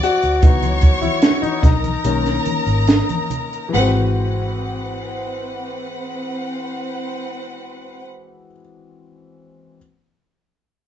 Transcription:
Already playing: grand piano F#3 C4 E4 F#4, violin section D5 D6
0.03 grand piano F#4, closed hi-hat
0.23 fingered electric bass D2, closed hi-hat
0.42 fingered electric bass C#2, grand piano E3 F#3 B3 D#4, violin section C#5 C#6, kick, closed hi-hat, low conga
0.63 closed hi-hat, high conga
0.81 kick, closed hi-hat
1.01 grand piano E4, closed hi-hat, high conga
1.22 snare, closed hi-hat, muted conga
1.42 grand piano D#4, muted fingered electric bass stroke, closed hi-hat, high conga
1.62 fingered electric bass B1, grand piano D#4, violin section A#4 A#5, kick, snare, closed hi-hat, low conga
1.84 closed hi-hat, high conga
2.04 fingered electric bass B1, grand piano D#3 A#3 C#4, closed hi-hat
2.26 snare, closed hi-hat, muted conga
2.45 closed hi-hat, high conga
2.67 fingered electric bass G#1, closed hi-hat
2.87 snare, closed hi-hat, muted conga
3.09 closed hi-hat, muted conga, high conga
3.30 closed hi-hat, low conga
3.53 closed hi-hat
3.69 grand piano E3
3.73 fingered electric bass G#1, grand piano G#3, violin section C4 B4 F#5, high conga
3.77 grand piano C4
3.81 grand piano F#4

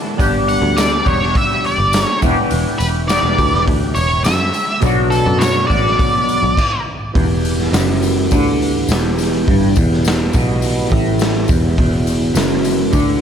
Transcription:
Already playing: clean electric guitar D3 E3 A3 D4 F#4, tonewheel organ E5 F#5 A5 D6
0.17 picked electric bass G1, clean electric guitar G3 B3 D4 G4, tonewheel organ D5 G5 B5 D6, kick, open hi-hat, tambourine
0.49 lead electric guitar F#5, open hi-hat, tambourine
0.62 picked electric bass D2
0.77 lead electric guitar D5, snare, open hi-hat, tambourine
1.03 picked electric bass E1, clean electric guitar G3 B3 D4 G4, kick, open hi-hat, tambourine
1.08 lead electric guitar C#5
1.23 snare
1.35 lead electric guitar E5, kick, open hi-hat
1.64 lead electric guitar D5, open hi-hat
1.78 picked electric bass G1
1.93 snare, open hi-hat, tambourine
2.04 lead electric guitar C#5
2.22 picked electric bass E1, clean electric guitar E3 B3 D4 G4, tonewheel organ E5, kick, open hi-hat, tambourine
2.51 picked electric bass E1, open hi-hat, tambourine
2.78 picked electric bass E1, lead electric guitar B4, open hi-hat, tambourine
3.08 clean electric guitar E3 B3 D4 G4, lead electric guitar D5, snare, open hi-hat, tambourine
3.23 picked electric bass E1
3.38 picked electric bass D2, kick, open hi-hat, tambourine
3.53 picked electric bass E1, snare
3.68 picked electric bass D2, kick, open hi-hat
3.95 picked electric bass E1, lead electric guitar C#5, open hi-hat, tambourine
4.24 picked electric bass F#2, lead electric guitar E5, snare, open hi-hat, tambourine
4.53 open hi-hat, tambourine
4.80 picked electric bass B1, clean electric guitar B2 F#3 B3 D4, tonewheel organ D5 F#5, kick, open hi-hat, tambourine
4.85 clean electric guitar F#4
5.10 lead electric guitar A4, open hi-hat, tambourine
5.26 picked electric bass F#2
5.39 lead electric guitar C#5, snare, open hi-hat, tambourine
5.67 picked electric bass A1, clean electric guitar F#3 B3 D4 F#4, lead electric guitar D5, kick, open hi-hat, tambourine
5.71 clean electric guitar B2
5.87 snare
5.99 kick, open hi-hat, tambourine
6.29 open hi-hat, tambourine
6.43 picked electric bass B1
6.57 kick, crash
7.13 picked electric bass E1, clean electric guitar E2, tonewheel organ E3 B3 E4 G4 B4, kick, open hi-hat
7.45 open hi-hat, tambourine
7.60 snare
7.71 picked electric bass F#1, clean electric guitar F#2, snare, open hi-hat, tambourine
8.03 open hi-hat, tambourine
8.31 picked electric bass D2, clean electric guitar D3, kick, open hi-hat, tambourine
8.62 open hi-hat
8.88 picked electric bass E1, clean electric guitar E2, snare, open hi-hat, tambourine
9.18 snare, open hi-hat, tambourine
9.48 picked electric bass G1, clean electric guitar G2, kick, open hi-hat
9.76 picked electric bass E1, clean electric guitar E2, kick, open hi-hat, tambourine
9.93 snare
10.05 snare, open hi-hat, tambourine
10.33 picked electric bass B1, clean electric guitar B2, kick, open hi-hat, tambourine
10.62 open hi-hat, tambourine
10.90 picked electric bass A1, clean electric guitar A2, kick, open hi-hat
11.19 snare, open hi-hat, tambourine
11.48 picked electric bass E1, clean electric guitar E2, kick, open hi-hat, tambourine
11.78 picked electric bass E1, clean electric guitar E2, tonewheel organ F#4, kick, open hi-hat
12.07 open hi-hat, tambourine
12.34 picked electric bass F#1, clean electric guitar F#2, snare, open hi-hat, tambourine
12.65 open hi-hat, tambourine
12.92 picked electric bass D2, clean electric guitar D3, kick, open hi-hat, tambourine

